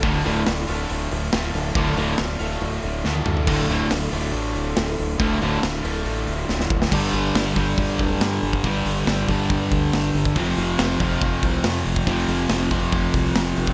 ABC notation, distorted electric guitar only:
X:1
M:4/4
L:1/8
Q:1/4=140
K:Dm
V:1 name="Distorted electric guitar" clef=bass
[D,,A,,D,] [D,,A,,D,] z6 | [D,,A,,D,] [D,,A,,D,] z6 | [D,,A,,D,] [D,,A,,D,] z6 | [D,,A,,D,] [D,,A,,D,] z6 |
[G,,D,G,]8 | [G,,D,G,]8 | [F,,C,F,]8 | [F,,C,F,]8 |]